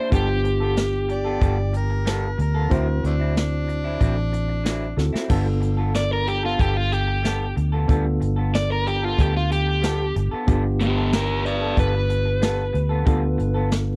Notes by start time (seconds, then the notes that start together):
Already playing: A#3 D4 E4
0.11 G1 G3 B3 D4 F4 G4 A4, kick, closed hi-hat
0.28 muted clean electric guitar stroke
0.43 muted clean electric guitar stroke, closed hi-hat
0.60 B3 F4 A4
0.75 muted clean electric guitar stroke, snare, closed hi-hat
1.08 D5, muted clean electric guitar stroke, closed hi-hat
1.25 B3 F4 A4
1.40 G1 G3 B3 F4 A4, kick, closed hi-hat
1.57 muted clean electric guitar stroke
1.73 A#4, muted clean electric guitar stroke, closed hi-hat
1.90 muted clean electric guitar stroke
2.05 G3 B3 F4 A4, snare, closed hi-hat
2.38 D2 A#4, muted clean electric guitar stroke, closed hi-hat
2.54 B3 F4 A4
2.69 D2 D3 F#3 C4 E4 F#4 C5, kick, closed hi-hat
2.88 muted clean electric guitar stroke
3.03 D2 A3 B3 D4, muted clean electric guitar stroke, closed hi-hat
3.20 F#3 C4 E4
3.36 D4, muted clean electric guitar stroke, snare, closed hi-hat
3.67 muted clean electric guitar stroke, closed hi-hat
3.84 F#3 C4 E4
4.00 A1 D3 F#3 C4 E4, kick, closed hi-hat
4.17 muted clean electric guitar stroke
4.32 muted clean electric guitar stroke, closed hi-hat
4.48 muted clean electric guitar stroke
4.64 D3 F#3 C4 E4, snare, closed hi-hat
4.97 D2 C4 E4 F#4 A4, muted clean electric guitar stroke, snare
5.13 F#3 C4 E4, snare
5.29 G1 G3 B3 D4 F4 A4, kick, crash
5.45 muted clean electric guitar stroke
5.61 muted clean electric guitar stroke, closed hi-hat
5.77 B3 F4 A4
5.93 D5, muted clean electric guitar stroke, snare, closed hi-hat
6.13 A#4
6.26 G4, muted clean electric guitar stroke, closed hi-hat
6.43 B3 F4 A4
6.58 G1 G3 B3 F4 G4 A4, kick, closed hi-hat
6.75 F4, muted clean electric guitar stroke
6.91 G4, muted clean electric guitar stroke, closed hi-hat
7.07 muted clean electric guitar stroke
7.23 G3 B3 F4 A4, snare, closed hi-hat
7.56 D2, muted clean electric guitar stroke, closed hi-hat
7.72 B3 F4 A4
7.88 D2 G3 B3 D4 F4 A4, kick, closed hi-hat
8.05 muted clean electric guitar stroke
8.20 G1, muted clean electric guitar stroke, closed hi-hat
8.36 B3 F4 A4
8.52 D5, muted clean electric guitar stroke, snare, closed hi-hat
8.72 A#4
8.85 G4, muted clean electric guitar stroke, closed hi-hat
9.02 B3 F4 A4
9.18 D2 G3 B3 F4 G4 A4, kick, closed hi-hat
9.35 F4, muted clean electric guitar stroke
9.50 G4, muted clean electric guitar stroke, closed hi-hat
9.67 muted clean electric guitar stroke
9.82 G3 B3 F4 A4, snare, closed hi-hat
10.15 G1, muted clean electric guitar stroke, closed hi-hat
10.31 B3 F4 A4
10.47 G1 G3 B3 D4 F4 G4 A4, kick, closed hi-hat
10.64 muted clean electric guitar stroke
10.80 B3 G4, muted clean electric guitar stroke, closed hi-hat
10.97 B3 F4 A4
11.12 G4 A#4, muted clean electric guitar stroke, snare, closed hi-hat
11.45 B4 D5, muted clean electric guitar stroke, closed hi-hat
11.61 B3 F4 A4
11.77 G1 G3 B3 F4 A4 B4, kick, closed hi-hat
11.94 muted clean electric guitar stroke
12.09 muted clean electric guitar stroke, closed hi-hat
12.25 muted clean electric guitar stroke
12.40 G3 B3 F4 A4, snare, closed hi-hat
12.73 D2, muted clean electric guitar stroke, closed hi-hat
12.89 B3 F4 A4
13.05 D2 G3 B3 D4 F4 A4, kick, closed hi-hat
13.22 muted clean electric guitar stroke
13.38 G1, muted clean electric guitar stroke, closed hi-hat
13.54 B3 F4 A4
13.70 muted clean electric guitar stroke, snare, closed hi-hat